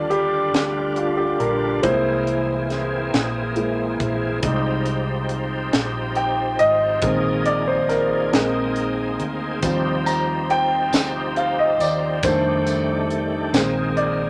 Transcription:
0.00 0.50 D#2 medium
0.00 1.81 D3 medium
0.00 1.39 G3 medium
0.00 1.81 G3 soft
0.00 1.39 D4 soft
0.00 1.81 D4 soft
0.00 0.97 F4 medium
0.00 1.81 F4 medium
0.00 0.11 D5 medium
0.10 0.93 G4 medium
0.10 closed hi-hat soft
0.53 1.36 D2 medium
0.53 snare medium
0.53 closed hi-hat medium
0.96 1.20 F4 medium
0.96 closed hi-hat soft
1.17 1.40 G4 medium
1.39 1.80 A#1 medium
1.39 1.79 G3 soft
1.39 1.79 D4 soft
1.39 1.79 F4 soft
1.39 1.80 A#4 medium
1.39 closed hi-hat soft
1.82 3.09 C2 loud
1.82 4.41 E3 medium
1.82 3.09 G#3 medium
1.82 3.09 A#3 soft
1.82 4.40 A#3 soft
1.82 4.40 C4 medium
1.82 3.09 E4 medium
1.82 4.40 G#4 medium
1.82 3.09 C5 medium
1.82 kick medium
1.82 closed hi-hat medium
2.27 closed hi-hat soft
2.70 snare soft
2.70 closed hi-hat soft
3.13 3.96 A#1 medium
3.13 snare medium
3.13 closed hi-hat medium
3.56 3.96 G#3 soft
3.56 3.96 A#3 soft
3.56 3.96 E4 soft
3.56 closed hi-hat soft
4.00 4.40 A#1 medium
4.00 kick medium
4.00 closed hi-hat soft
4.42 5.69 C2 medium
4.42 8.29 F3 medium
4.42 5.00 G3 medium
4.42 5.01 G#3 soft
4.42 7.00 C4 medium
4.42 5.01 D#4 medium
4.42 7.00 D#4 soft
4.42 7.00 G4 medium
4.42 kick loud
4.42 closed hi-hat medium
4.86 closed hi-hat soft
5.29 closed hi-hat soft
5.73 6.56 A#1 medium
5.73 snare medium
5.73 closed hi-hat medium
6.15 6.61 G5 medium
6.15 closed hi-hat soft
6.59 7.00 G#1 medium
6.59 7.49 D#5 loud
6.59 closed hi-hat soft
7.02 8.29 A#1 medium
7.02 7.60 D#3 medium
7.02 7.61 G#3 soft
7.02 9.60 A#3 soft
7.02 7.61 C4 medium
7.02 8.31 D#4 medium
7.02 9.60 G#4 medium
7.02 kick loud
7.02 closed hi-hat medium
7.46 7.68 D5 medium
7.46 closed hi-hat soft
7.67 7.90 C5 medium
7.89 8.31 A#4 medium
7.89 snare soft
7.89 closed hi-hat soft
8.31 9.16 A#1 medium
8.31 9.59 G#3 soft
8.31 12.20 C4 medium
8.31 9.59 C4 medium
8.31 9.58 D#4 medium
8.31 9.61 D#4 medium
8.31 9.59 A#4 medium
8.31 snare loud
8.31 closed hi-hat medium
8.76 closed hi-hat soft
9.19 9.60 D2 medium
9.19 closed hi-hat soft
9.62 10.89 D#2 medium
9.62 12.21 F3 medium
9.62 10.89 F3 medium
9.62 10.89 G3 soft
9.62 10.89 C4 medium
9.62 12.21 D#4 medium
9.62 13.50 G4 medium
9.62 kick medium
9.62 closed hi-hat medium
9.62 tambourine medium
10.06 10.47 A#5 medium
10.06 closed hi-hat soft
10.06 tambourine soft
10.50 11.40 G5 loud
10.50 closed hi-hat soft
10.93 11.76 D2 medium
10.93 snare loud
10.93 closed hi-hat medium
10.93 tambourine medium
11.36 11.57 F5 medium
11.36 closed hi-hat soft
11.59 11.81 D#5 medium
11.79 12.20 D#2 medium
11.79 12.21 D5 medium
11.79 closed hi-hat soft
11.79 tambourine medium
12.23 13.54 F2 loud
12.23 13.50 D#3 medium
12.23 14.30 D#3 medium
12.23 13.50 G3 medium
12.23 13.53 A3 medium
12.23 13.50 A3 soft
12.23 13.53 D4 medium
12.23 13.50 D4 medium
12.23 13.50 C5 medium
12.23 kick loud
12.23 closed hi-hat medium
12.23 tambourine medium
12.67 closed hi-hat soft
12.67 tambourine soft
13.10 closed hi-hat soft
13.53 14.30 A#1 medium
13.53 14.30 D#3 soft
13.53 14.30 G#3 soft
13.53 14.30 A#3 medium
13.53 14.30 C4 medium
13.53 14.30 G#4 medium
13.53 snare loud
13.53 closed hi-hat medium
13.53 tambourine loud
13.97 14.30 D5 medium
13.97 closed hi-hat soft

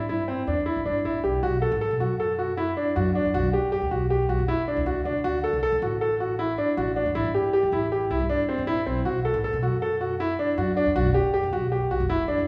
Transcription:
0.09 0.46 G1 medium
0.09 0.21 E4 medium
0.28 0.40 C4 medium
0.47 0.66 E2 medium
0.47 0.60 D4 medium
0.66 0.78 E4 medium
0.76 0.85 A1 medium
0.85 1.03 G1 medium
0.85 0.98 D4 medium
1.04 1.22 A1 medium
1.04 1.17 E4 medium
1.24 1.41 B1 medium
1.24 1.36 G4 medium
1.43 1.61 B1 medium
1.43 1.55 F#4 medium
1.62 1.74 A4 medium
1.71 1.81 A1 loud
1.81 1.93 A4 medium
1.91 2.00 B2 medium
2.00 2.73 F#2 medium
2.00 2.12 F#4 medium
2.20 2.32 A4 medium
2.39 2.51 F#4 medium
2.57 2.70 E4 medium
2.77 2.89 D4 medium
2.96 3.23 F#2 loud
2.96 3.08 F#4 medium
3.15 3.27 D4 medium
3.25 3.34 E2 medium
3.34 3.43 B1 loud
3.34 3.46 F#4 medium
3.43 3.62 F#1 medium
3.53 3.65 G4 medium
3.72 3.84 G4 medium
3.82 3.91 D2 medium
3.91 4.27 B1 medium
3.91 4.03 F#4 medium
4.10 4.22 G4 medium
4.29 4.38 B1 medium
4.29 4.41 F#4 medium
4.38 4.57 F#1 medium
4.48 4.60 E4 medium
4.68 4.80 D4 medium
4.77 4.85 D2 medium
4.86 4.95 D2 medium
4.86 4.99 F#4 medium
5.05 5.15 C2 medium
5.05 5.17 D4 medium
5.24 5.43 D2 loud
5.24 5.36 F#4 medium
5.44 5.56 A4 medium
5.53 5.62 C2 medium
5.63 5.75 A4 medium
5.72 5.81 D3 loud
5.82 6.54 A1 medium
5.82 5.94 F#4 medium
6.01 6.13 A4 medium
6.20 6.32 F#4 medium
6.39 6.51 E4 medium
6.58 6.70 D4 medium
6.77 7.04 A1 loud
6.77 6.89 F#4 medium
6.96 7.08 D4 medium
7.06 7.15 E2 medium
7.15 7.24 A1 medium
7.15 7.27 E4 medium
7.25 7.43 G1 medium
7.34 7.46 G4 medium
7.53 7.65 G4 medium
7.63 7.72 E2 medium
7.72 8.08 A1 medium
7.72 7.85 E4 medium
7.92 8.04 G4 medium
8.10 8.19 C2 medium
8.10 8.23 E4 medium
8.19 8.38 G1 medium
8.29 8.41 D4 medium
8.49 8.61 C4 medium
8.58 8.67 E2 medium
8.67 8.84 A1 medium
8.67 8.79 E4 medium
8.86 9.04 B1 medium
8.86 8.98 C4 medium
9.05 9.23 B1 medium
9.05 9.17 F#4 medium
9.25 9.37 A4 medium
9.34 9.43 A1 loud
9.44 9.56 A4 medium
9.53 9.62 B2 medium
9.62 10.34 F#2 medium
9.62 9.75 F#4 medium
9.82 9.94 A4 medium
10.01 10.13 F#4 medium
10.20 10.32 E4 medium
10.39 10.51 D4 medium
10.58 10.84 F#2 medium
10.58 10.70 F#4 medium
10.77 10.88 D4 medium
10.86 10.95 E2 medium
10.96 11.04 B1 loud
10.96 11.07 F#4 medium
11.06 11.23 F#1 medium
11.14 11.26 G4 medium
11.34 11.45 G4 medium
11.43 11.52 D2 medium
11.53 11.88 B1 medium
11.53 11.64 F#4 medium
11.72 11.84 G4 medium
11.91 11.99 B1 medium
11.91 12.03 F#4 medium
12.00 12.18 F#1 medium
12.10 12.21 E4 medium
12.28 12.40 D4 medium
12.38 12.46 D2 medium

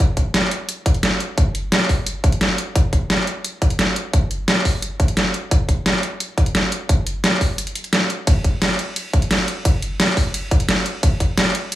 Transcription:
0.17 kick medium
0.17 closed hi-hat medium
0.34 snare loud
0.34 closed hi-hat loud
0.51 closed hi-hat medium
0.69 closed hi-hat loud
0.86 kick loud
0.86 closed hi-hat medium
0.94 closed hi-hat soft
1.03 snare loud
1.03 closed hi-hat loud
1.20 closed hi-hat medium
1.38 kick loud
1.38 closed hi-hat medium
1.55 closed hi-hat medium
1.72 snare loud
1.72 closed hi-hat medium
1.89 kick medium
1.89 open hi-hat medium
2.07 closed hi-hat loud
2.24 kick loud
2.24 closed hi-hat medium
2.32 closed hi-hat soft
2.41 snare loud
2.41 closed hi-hat medium
2.58 closed hi-hat medium
2.76 kick loud
2.76 closed hi-hat medium
2.93 kick medium
2.93 closed hi-hat medium
3.10 snare loud
3.10 closed hi-hat medium
3.27 closed hi-hat medium
3.45 closed hi-hat medium
3.62 kick loud
3.62 closed hi-hat medium
3.70 closed hi-hat soft
3.79 snare loud
3.79 closed hi-hat medium
3.96 closed hi-hat medium
4.13 kick loud
4.13 closed hi-hat medium
4.31 closed hi-hat medium
4.48 snare loud
4.48 closed hi-hat medium
4.65 kick medium
4.65 open hi-hat medium
4.82 closed hi-hat medium
5.00 kick medium
5.00 closed hi-hat medium
5.08 closed hi-hat soft
5.17 snare loud
5.17 closed hi-hat medium
5.34 closed hi-hat medium
5.51 kick loud
5.51 closed hi-hat medium
5.69 kick medium
5.69 closed hi-hat medium
5.86 snare loud
5.86 closed hi-hat medium
6.03 closed hi-hat medium
6.20 closed hi-hat medium
6.38 kick loud
6.38 closed hi-hat medium
6.46 closed hi-hat soft
6.55 snare loud
6.55 closed hi-hat medium
6.72 closed hi-hat medium
6.89 kick loud
6.89 closed hi-hat loud
7.07 closed hi-hat medium
7.24 snare loud
7.24 closed hi-hat loud
7.41 kick medium
7.41 open hi-hat medium
7.58 closed hi-hat loud
7.67 closed hi-hat soft
7.75 closed hi-hat medium
7.84 closed hi-hat soft
7.93 snare loud
7.93 closed hi-hat medium
8.10 closed hi-hat medium
8.27 kick loud
8.27 closed hi-hat loud
8.27 ride medium
8.44 kick medium
8.44 closed hi-hat medium
8.62 snare loud
8.62 closed hi-hat medium
8.62 ride medium
8.79 closed hi-hat medium
8.96 closed hi-hat loud
8.96 ride medium
9.13 kick loud
9.13 closed hi-hat medium
9.22 closed hi-hat soft
9.31 snare loud
9.31 closed hi-hat loud
9.31 ride medium
9.48 closed hi-hat medium
9.65 kick loud
9.65 closed hi-hat loud
9.65 ride medium
9.82 closed hi-hat medium
10.00 snare loud
10.00 closed hi-hat medium
10.00 ride medium
10.17 kick medium
10.17 open hi-hat medium
10.34 closed hi-hat loud
10.34 ride medium
10.51 kick loud
10.51 closed hi-hat medium
10.60 closed hi-hat soft
10.69 snare loud
10.69 closed hi-hat loud
10.69 ride medium
10.86 closed hi-hat medium
11.03 kick loud
11.03 closed hi-hat loud
11.03 ride medium
11.20 kick medium
11.20 closed hi-hat medium
11.38 snare loud
11.38 closed hi-hat loud
11.38 ride medium
11.55 closed hi-hat medium
11.72 closed hi-hat loud
11.72 ride medium

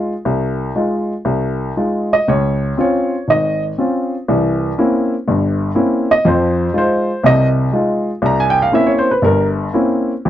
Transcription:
0.00 0.12 G#3 medium
0.00 0.12 D#4 soft
0.00 0.12 F4 medium
0.25 0.69 C2 medium
0.76 1.12 G#3 medium
0.76 1.12 D#4 soft
0.76 1.12 F4 medium
1.25 1.70 C2 medium
1.77 2.13 G#3 medium
1.77 2.13 D#4 soft
1.77 2.14 F4 medium
2.13 2.28 D#5 medium
2.28 2.71 C#2 medium
2.28 2.75 C#5 medium
2.77 3.14 C4 medium
2.77 3.14 C#4 soft
2.77 3.14 F4 medium
2.77 3.26 C#5 medium
3.28 3.71 G#1 medium
3.28 3.62 D#5 medium
3.78 4.13 C4 soft
3.78 4.14 C#4 soft
3.78 4.14 F4 medium
4.28 4.71 C2 medium
4.28 4.71 E3 medium
4.78 5.13 A#3 medium
4.78 5.13 C4 soft
4.78 5.13 C#4 soft
4.78 5.13 E4 medium
5.28 5.70 G1 medium
5.28 5.70 G2 medium
5.75 6.11 A#3 medium
5.75 6.11 C4 soft
5.75 6.11 C#4 soft
5.75 6.11 E4 medium
6.11 6.25 D#5 medium
6.25 6.68 F2 medium
6.25 6.68 F3 medium
6.25 6.72 C5 medium
6.74 7.10 G#3 medium
6.74 7.10 D#4 soft
6.74 7.10 F4 medium
6.78 7.22 C5 medium
7.24 7.67 C2 medium
7.24 7.67 C3 medium
7.24 7.46 D#5 medium
7.72 8.09 G#3 medium
7.72 8.09 D#4 medium
7.72 8.09 F4 medium
8.22 8.66 C2 medium
8.22 8.41 A#5 medium
8.40 8.57 G#5 medium
8.50 8.61 G5 medium
8.62 8.71 F5 medium
8.72 9.09 A#3 medium
8.72 9.09 C4 soft
8.72 9.09 C#4 medium
8.72 9.09 E4 medium
8.72 8.91 E5 medium
8.87 9.05 C#5 medium
8.99 9.11 C5 medium
9.11 9.21 B4 medium
9.22 9.67 G1 medium
9.22 9.68 G2 medium
9.22 9.45 A#4 medium
9.73 10.11 A#3 medium
9.73 10.11 C4 soft
9.73 10.11 C#4 medium
9.73 10.11 E4 medium
10.25 10.29 F2 medium
10.25 10.29 F3 medium

